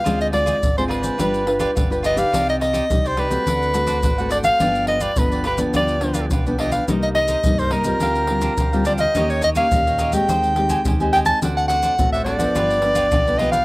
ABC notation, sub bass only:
X:1
M:4/4
L:1/8
Q:1/4=106
K:Gphr
V:1 name="Sub bass" clef=bass
D,,2 A,,,2 G,,,2 G,,,2 | C,,2 C,,2 D,,2 A,,,2 | G,,,2 G,,,2 D,,2 =B,,,2 | C,,2 C,,2 D,,2 D,,2 |
E,,2 E,,2 E,,2 E,,2 | D,,2 =A,,,2 G,,,2 =B,,,2 |]